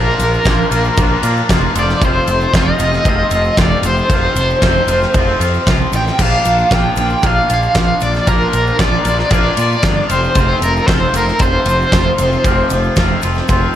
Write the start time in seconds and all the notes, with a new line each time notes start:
Already playing: A#1 A#2 F3 A#3 D4 F4 A#4
0.19 A#1, ride, shaker
0.33 shaker
0.45 A#1 A#2 F3 A#3 D4 F4, kick, snare, ride, shaker
0.71 A#1 A#3 D4 F4, ride, shaker
0.84 shaker
0.97 A#1 F3 A#3 D4 F4, kick, ride, shaker
1.23 A#2 A#3 D4 F4, ride, shaker
1.37 shaker
1.49 F1 F3 A#3 D4 F4, kick, snare, ride, shaker
1.75 F1 F2 C3 F3 C4 F4 D5, ride, shaker
1.89 snare, shaker
2.00 F1 F2 C3 F3 C4 F4, kick, ride, shaker
2.05 C5
2.27 F1, ride, shaker
2.41 shaker
2.52 F1 F2 C3 F3 C4 F4, kick, snare, ride, shaker
2.57 D#5
2.79 F1 F3 C4 F4, ride, shaker
2.93 snare, shaker
3.05 F1 C3 F3 C4 F4, kick, ride, shaker
3.09 D#5
3.31 F1 F3 C4 F4, ride, shaker
3.44 shaker
3.57 F1 C3 F3 C4 F4, kick, snare, ride, shaker
3.61 D5
3.82 F1, ride, shaker
3.86 C5
3.97 shaker
4.09 F1 F2 C3 F3 C4 F4, kick, ride, shaker
4.35 F1, ride, shaker
4.50 shaker
4.62 F1 F2 C3 F3 C4 F4, kick, snare, ride, shaker
4.87 F1 F3 C4 F4, ride, shaker
5.02 snare, shaker
5.14 F1 C3 F3 C4 F4, kick, ride, shaker
5.40 F2 F3 C4 F4, ride, shaker
5.54 shaker
5.66 C2 C3 F3 C4 F4, kick, snare, ride, shaker
5.92 A1 G5, ride, shaker
6.07 snare, shaker
6.18 A#1 A#2 F3 A#3 D4 F4, kick, crash, shaker
6.22 F5
6.45 A#1, ride, shaker
6.58 shaker
6.69 A#1 A#2 F3 A#3 D4 F4, kick, snare, ride, shaker
6.74 G5
6.96 A#1 A#3 D4 F4, ride, shaker
7.10 shaker
7.21 A#1 F3 A#3 D4 F4, kick, ride, shaker
7.27 F5
7.47 A#1 A#3 D4 F4, ride, shaker
7.54 F5
7.63 shaker
7.73 A#1 F3 A#3 D4 F4, kick, snare, ride, shaker
7.79 F5
8.00 A#1 D5, ride, shaker
8.14 snare, shaker
8.25 A#1 A#2 F3 A#3 D4 F4 A#4, kick, ride, shaker
8.53 A#1, ride, shaker
8.67 shaker
8.77 A#1 A#2 F3 A#3 D4 F4, kick, snare, ride, shaker
8.82 D5
9.04 A#1 A#3 D4 F4, ride, shaker
9.19 snare
9.30 A#1 F3 A#3 D4 F4 D5, kick, ride, shaker
9.56 A#2 A#3 D4 F4, ride, shaker
9.72 shaker
9.82 G1 F3 A#3 D4 F4, kick, snare, ride, shaker
10.08 F1 F2 C3 F3 C4 F4 C5, ride, shaker
10.24 shaker
10.35 F1 F2 C3 F3 C4 F4, kick, ride, shaker
10.62 F1 A#4, ride, shaker
10.77 shaker
10.87 F1 C3 F3 C4 F4 C5, kick, snare, ride, shaker
11.13 F1 F3 C4 F4 A#4, ride, shaker
11.28 snare, shaker
11.39 F1 C3 F3 C4 F4 C5, kick, ride, shaker
11.65 F1 F3 C4 F4, ride, shaker
11.81 shaker
11.92 F1 C3 F3 C4 F4, kick, snare, ride, shaker
12.18 F1, ride, shaker
12.32 shaker
12.44 F1 F2 C3 F3 C4 F4, kick, ride, shaker
12.70 F1, ride, shaker
12.84 shaker
12.96 F1 C3 F3 C4 F4, kick, snare, ride, shaker
13.22 F1 F3 C4 F4, ride, shaker
13.35 snare, shaker
13.48 F1 C3 F3 C4 F4, kick, ride, shaker